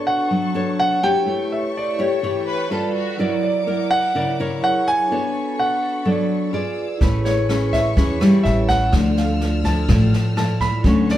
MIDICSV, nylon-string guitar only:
0, 0, Header, 1, 2, 480
1, 0, Start_track
1, 0, Key_signature, 3, "major"
1, 0, Tempo, 478469
1, 1275, Time_signature, 4, 2, 24, 8
1, 11213, End_track
2, 0, Start_track
2, 0, Title_t, "Nylon-string guitar"
2, 0, Program_c, 0, 24
2, 0, Note_on_c, 0, 59, 52
2, 0, Note_on_c, 0, 62, 49
2, 0, Note_on_c, 0, 69, 48
2, 0, Note_on_c, 0, 73, 54
2, 290, Note_off_c, 0, 59, 0
2, 308, Note_on_c, 0, 54, 62
2, 514, Note_off_c, 0, 62, 0
2, 516, Note_off_c, 0, 73, 0
2, 517, Note_off_c, 0, 69, 0
2, 546, Note_on_c, 0, 62, 66
2, 552, Note_on_c, 0, 69, 59
2, 558, Note_on_c, 0, 73, 65
2, 992, Note_off_c, 0, 62, 0
2, 994, Note_off_c, 0, 69, 0
2, 998, Note_off_c, 0, 73, 0
2, 1034, Note_on_c, 0, 64, 64
2, 1038, Note_on_c, 0, 67, 58
2, 1043, Note_on_c, 0, 73, 62
2, 1247, Note_off_c, 0, 54, 0
2, 1267, Note_on_c, 0, 57, 54
2, 1957, Note_off_c, 0, 64, 0
2, 1958, Note_off_c, 0, 67, 0
2, 1958, Note_off_c, 0, 73, 0
2, 1993, Note_on_c, 0, 64, 61
2, 1998, Note_on_c, 0, 67, 61
2, 2002, Note_on_c, 0, 73, 66
2, 2196, Note_off_c, 0, 64, 0
2, 2198, Note_off_c, 0, 67, 0
2, 2200, Note_off_c, 0, 73, 0
2, 2207, Note_off_c, 0, 57, 0
2, 2238, Note_on_c, 0, 52, 54
2, 2238, Note_on_c, 0, 64, 58
2, 2244, Note_on_c, 0, 67, 52
2, 2246, Note_on_c, 0, 73, 64
2, 2678, Note_off_c, 0, 64, 0
2, 2681, Note_off_c, 0, 73, 0
2, 2682, Note_off_c, 0, 67, 0
2, 2693, Note_off_c, 0, 52, 0
2, 2717, Note_on_c, 0, 65, 60
2, 2723, Note_on_c, 0, 69, 57
2, 2728, Note_on_c, 0, 71, 66
2, 3177, Note_off_c, 0, 65, 0
2, 3180, Note_off_c, 0, 69, 0
2, 3182, Note_off_c, 0, 71, 0
2, 3196, Note_on_c, 0, 54, 55
2, 3200, Note_on_c, 0, 64, 58
2, 3203, Note_on_c, 0, 70, 49
2, 3210, Note_on_c, 0, 74, 63
2, 3638, Note_off_c, 0, 64, 0
2, 3642, Note_off_c, 0, 70, 0
2, 3643, Note_off_c, 0, 74, 0
2, 3680, Note_on_c, 0, 64, 47
2, 3684, Note_on_c, 0, 70, 55
2, 3689, Note_on_c, 0, 74, 49
2, 4119, Note_off_c, 0, 64, 0
2, 4122, Note_off_c, 0, 70, 0
2, 4124, Note_off_c, 0, 74, 0
2, 4133, Note_off_c, 0, 54, 0
2, 4161, Note_on_c, 0, 49, 55
2, 4166, Note_on_c, 0, 64, 57
2, 4167, Note_on_c, 0, 70, 58
2, 4173, Note_on_c, 0, 74, 65
2, 4301, Note_off_c, 0, 64, 0
2, 4302, Note_off_c, 0, 70, 0
2, 4306, Note_off_c, 0, 74, 0
2, 4410, Note_on_c, 0, 64, 55
2, 4417, Note_on_c, 0, 73, 73
2, 4418, Note_on_c, 0, 70, 70
2, 4615, Note_off_c, 0, 49, 0
2, 5085, Note_off_c, 0, 64, 0
2, 5087, Note_off_c, 0, 70, 0
2, 5088, Note_off_c, 0, 73, 0
2, 5131, Note_on_c, 0, 59, 53
2, 5133, Note_on_c, 0, 62, 59
2, 5135, Note_on_c, 0, 69, 52
2, 5138, Note_on_c, 0, 73, 61
2, 6045, Note_off_c, 0, 62, 0
2, 6047, Note_off_c, 0, 69, 0
2, 6047, Note_off_c, 0, 73, 0
2, 6060, Note_off_c, 0, 59, 0
2, 6072, Note_on_c, 0, 62, 58
2, 6073, Note_on_c, 0, 54, 59
2, 6075, Note_on_c, 0, 69, 61
2, 6515, Note_off_c, 0, 62, 0
2, 6517, Note_off_c, 0, 69, 0
2, 6531, Note_off_c, 0, 54, 0
2, 6549, Note_on_c, 0, 65, 55
2, 6557, Note_on_c, 0, 68, 56
2, 6559, Note_on_c, 0, 74, 67
2, 6875, Note_off_c, 0, 65, 0
2, 6880, Note_off_c, 0, 68, 0
2, 6880, Note_off_c, 0, 74, 0
2, 7032, Note_on_c, 0, 57, 48
2, 7037, Note_on_c, 0, 61, 57
2, 7041, Note_on_c, 0, 68, 47
2, 7045, Note_on_c, 0, 71, 58
2, 7344, Note_off_c, 0, 61, 0
2, 7348, Note_off_c, 0, 68, 0
2, 7350, Note_off_c, 0, 71, 0
2, 7516, Note_on_c, 0, 61, 53
2, 7522, Note_on_c, 0, 68, 55
2, 7529, Note_on_c, 0, 71, 51
2, 7825, Note_off_c, 0, 61, 0
2, 7828, Note_off_c, 0, 68, 0
2, 7832, Note_off_c, 0, 71, 0
2, 7971, Note_off_c, 0, 57, 0
2, 7992, Note_on_c, 0, 52, 58
2, 7995, Note_on_c, 0, 61, 52
2, 7997, Note_on_c, 0, 68, 57
2, 8001, Note_on_c, 0, 71, 64
2, 8197, Note_off_c, 0, 61, 0
2, 8198, Note_off_c, 0, 68, 0
2, 8200, Note_off_c, 0, 71, 0
2, 8234, Note_on_c, 0, 55, 65
2, 8238, Note_on_c, 0, 61, 63
2, 8243, Note_on_c, 0, 64, 69
2, 8450, Note_off_c, 0, 52, 0
2, 8917, Note_off_c, 0, 55, 0
2, 8918, Note_off_c, 0, 61, 0
2, 8921, Note_off_c, 0, 64, 0
2, 8956, Note_on_c, 0, 50, 47
2, 8959, Note_on_c, 0, 53, 58
2, 8964, Note_on_c, 0, 57, 51
2, 9639, Note_off_c, 0, 53, 0
2, 9640, Note_off_c, 0, 57, 0
2, 9671, Note_on_c, 0, 53, 66
2, 9675, Note_on_c, 0, 57, 59
2, 9682, Note_on_c, 0, 64, 74
2, 9875, Note_off_c, 0, 53, 0
2, 9877, Note_off_c, 0, 57, 0
2, 9880, Note_off_c, 0, 64, 0
2, 9893, Note_off_c, 0, 50, 0
2, 9916, Note_on_c, 0, 45, 60
2, 9917, Note_on_c, 0, 53, 59
2, 9920, Note_on_c, 0, 57, 54
2, 9927, Note_on_c, 0, 64, 55
2, 10357, Note_off_c, 0, 53, 0
2, 10360, Note_off_c, 0, 57, 0
2, 10363, Note_off_c, 0, 64, 0
2, 10399, Note_on_c, 0, 53, 59
2, 10405, Note_on_c, 0, 57, 63
2, 10407, Note_on_c, 0, 64, 66
2, 10720, Note_off_c, 0, 53, 0
2, 10722, Note_off_c, 0, 57, 0
2, 10724, Note_off_c, 0, 64, 0
2, 10852, Note_off_c, 0, 45, 0
2, 10878, Note_on_c, 0, 50, 57
2, 10881, Note_on_c, 0, 54, 55
2, 10883, Note_on_c, 0, 57, 59
2, 10887, Note_on_c, 0, 61, 63
2, 11186, Note_off_c, 0, 54, 0
2, 11189, Note_off_c, 0, 57, 0
2, 11189, Note_off_c, 0, 61, 0
2, 11213, Note_off_c, 0, 50, 0
2, 11213, End_track
0, 0, End_of_file